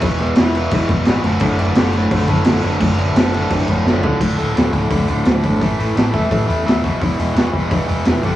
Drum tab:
CC |xxxxxxxx|xxxxxxxx|xxxxxx--|x-------|
HH |--------|--------|--------|-ooooooo|
SD |--o---o-|--o---o-|--o---o-|--o---o-|
FT |--------|--------|-------o|--------|
BD |o---oo--|o---oo--|o---oo--|o--oo--o|

CC |--------|--------|
HH |oooooooo|oooooooo|
SD |--o---o-|--o---o-|
FT |--------|--------|
BD |o--oo--o|o--oo--o|